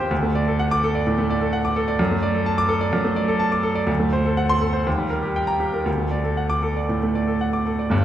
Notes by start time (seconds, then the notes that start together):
Already playing: D#2 C4 C5 G5 C6
0.00 G4
0.11 D2
0.23 A3
0.35 D5
0.48 A4
0.59 F#5
0.71 D6
0.84 A4
0.95 D5
1.07 A2
1.18 A3
1.30 D5
1.41 A4
1.53 F#5
1.65 D6
1.76 A4
1.88 D5
1.99 F#2
2.11 A3
2.23 D5
2.34 A4
2.46 A5
2.58 D6
2.69 A4
2.81 D5
2.93 F#2
3.04 A3
3.16 D5
3.28 A4
3.39 A5
3.52 D6
3.63 A4
3.75 D5
3.87 D2
3.99 A3
4.13 C5
4.25 A4
4.37 F#5
4.49 C6
4.61 A4
4.73 C5
4.86 D#2
4.98 G3
5.10 A#4
5.23 G4
5.36 G5
5.47 A#5
5.60 G4
5.73 A#4
5.86 D2
5.98 A3
6.11 D5
6.24 A4
6.37 F#5
6.50 D6
6.63 A4
6.77 D5
6.89 A2
7.03 A3
7.15 D5
7.27 A4
7.41 F#5
7.53 D6
7.66 A4
7.79 D5
7.90 G1 G2